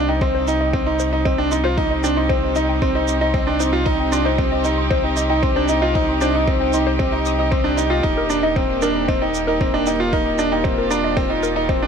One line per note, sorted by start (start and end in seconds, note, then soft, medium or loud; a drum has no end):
0.00 8.01 C2 medium
0.00 8.00 C4 medium
0.00 10.08 D#4 medium
0.00 11.87 G4 medium
0.09 0.20 D#4 medium
0.09 0.18 G5 medium
0.21 0.45 C4 medium
0.21 0.31 C6 medium
0.21 kick loud
0.35 0.44 C5 loud
0.48 0.71 D#4 medium
0.48 shaker medium
0.61 0.70 D#5 loud
0.73 0.85 C4 medium
0.73 0.83 G5 medium
0.73 kick loud
0.86 1.10 D#4 medium
0.86 0.96 C6 medium
1.00 1.09 C5 loud
1.00 shaker medium
1.13 1.24 D#4 medium
1.25 1.37 C4 medium
1.25 1.35 D#5 loud
1.25 kick loud
1.38 1.50 D4 medium
1.38 1.48 G5 medium
1.51 1.63 D#4 medium
1.51 1.61 C6 medium
1.51 shaker medium
1.64 1.76 F4 medium
1.64 1.74 C5 loud
1.77 2.01 D#4 medium
1.77 kick loud
1.91 2.00 D#5 loud
2.04 2.15 D4 medium
2.04 2.13 G5 medium
2.04 shaker medium
2.17 2.28 D#4 medium
2.17 2.26 C6 medium
2.29 2.53 C4 medium
2.29 2.39 C5 loud
2.29 kick loud
2.56 2.79 D#4 medium
2.56 2.65 D#5 loud
2.56 shaker medium
2.69 2.78 G5 medium
2.82 2.94 C4 medium
2.82 2.91 C6 medium
2.82 kick loud
2.95 3.18 D#4 medium
2.95 3.04 C5 loud
3.08 shaker medium
3.21 3.33 D#4 medium
3.21 3.30 D#5 loud
3.34 3.46 C4 medium
3.34 3.44 G5 medium
3.34 kick loud
3.47 3.59 D4 medium
3.47 3.57 C6 medium
3.60 3.72 D#4 medium
3.60 3.69 C5 loud
3.60 shaker medium
3.73 3.85 F4 medium
3.86 4.09 D#4 loud
3.86 3.96 D#5 loud
3.86 kick loud
4.00 4.09 G5 medium
4.12 4.24 D4 medium
4.12 4.22 C6 medium
4.12 shaker medium
4.25 4.37 D#4 medium
4.25 4.35 C5 medium
4.38 4.62 C4 medium
4.38 kick loud
4.52 4.61 D#5 medium
4.64 4.88 D#4 medium
4.64 4.74 G5 medium
4.64 shaker medium
4.78 4.87 C6 medium
4.91 5.02 C4 medium
4.91 5.00 C5 loud
4.91 kick loud
5.04 5.27 D#4 medium
5.17 5.26 D#5 loud
5.17 shaker medium
5.30 5.41 D#4 medium
5.30 5.39 G5 medium
5.43 5.54 C4 medium
5.43 5.52 C6 medium
5.43 kick loud
5.56 5.68 D4 medium
5.56 5.65 C5 loud
5.68 5.81 D#4 medium
5.68 shaker medium
5.82 5.94 F4 medium
5.82 5.91 D#5 loud
5.95 6.18 D#4 medium
5.95 6.04 G5 medium
5.95 kick loud
6.09 6.18 C6 medium
6.21 6.33 D4 medium
6.21 6.31 C5 loud
6.21 shaker medium
6.34 6.46 D#4 medium
6.48 6.71 C4 medium
6.48 6.57 D#5 loud
6.48 kick loud
6.61 6.70 G5 medium
6.73 6.97 D#4 medium
6.73 6.83 C6 medium
6.73 shaker medium
6.87 6.96 C5 loud
6.99 7.11 C4 medium
6.99 kick loud
7.12 7.36 D#4 medium
7.12 7.22 D#5 loud
7.26 7.39 D#6 loud
7.26 shaker medium
7.39 7.50 D#4 medium
7.39 7.48 D#6 medium
7.52 7.63 C4 medium
7.52 7.65 C6 medium
7.52 kick loud
7.64 7.76 D4 medium
7.77 7.89 D#4 medium
7.77 7.84 D#5 medium
7.77 shaker medium
7.90 8.02 F4 medium
7.90 8.03 D#5 loud
8.03 11.87 D#1 medium
8.03 11.87 A#3 medium
8.03 8.27 D#4 medium
8.03 kick loud
8.18 8.26 A#4 loud
8.30 8.41 D4 medium
8.30 8.39 A#5 medium
8.30 shaker medium
8.43 8.55 D#4 medium
8.43 8.52 D#5 loud
8.56 8.79 C4 medium
8.56 8.65 G5 medium
8.56 kick loud
8.82 9.05 D4 medium
8.82 8.91 A#4 loud
8.82 shaker medium
8.95 9.04 A#5 medium
9.08 9.20 C4 medium
9.08 9.17 D#5 loud
9.08 kick loud
9.22 9.45 D#4 medium
9.22 9.31 G5 medium
9.34 shaker medium
9.47 9.59 D#4 medium
9.47 9.57 A#4 loud
9.61 9.72 C4 medium
9.61 9.70 A#5 medium
9.61 kick loud
9.74 9.85 D4 medium
9.74 9.83 D#5 loud
9.86 9.98 D#4 medium
9.86 9.96 G5 medium
9.86 shaker medium
10.00 10.11 F4 medium
10.12 10.36 D#4 loud
10.12 11.87 F4 medium
10.12 10.22 A#4 loud
10.12 kick loud
10.26 10.35 A#5 medium
10.39 10.50 D4 medium
10.39 10.48 D#5 loud
10.39 shaker medium
10.52 10.63 D#4 medium
10.52 10.61 G5 medium
10.64 10.88 C4 medium
10.64 kick loud
10.78 10.87 A#4 loud
10.91 11.14 D4 medium
10.91 11.00 A#5 medium
10.91 shaker medium
11.04 11.13 D#5 loud
11.17 11.28 C4 loud
11.17 11.26 G5 medium
11.17 kick loud
11.30 11.53 D#4 medium
11.43 11.52 A#4 loud
11.43 shaker medium
11.56 11.68 D#4 medium
11.56 11.65 A#5 medium
11.69 11.81 C4 medium
11.69 11.78 D#5 loud
11.69 kick loud
11.82 11.87 D4 medium
11.82 11.87 G5 medium